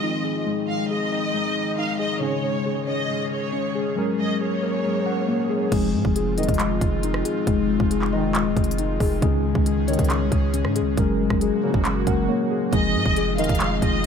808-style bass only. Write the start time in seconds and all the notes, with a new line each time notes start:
5.72 F1
5.94 G#2
6.05 F1
6.38 D#1
6.49 F1
6.81 F1
7.47 F1
7.80 F1
8.35 D#1
8.56 F1
9.00 F1
9.22 C#2
9.55 C#2
9.99 C#2
10.21 C2
10.32 C#2
10.65 G#2
10.81 C#2
10.98 F#1
11.30 F#1
11.74 F#1
12.07 F#1
12.73 F1
12.95 G#2
13.06 F1
13.38 D#1
13.49 F1
13.82 F1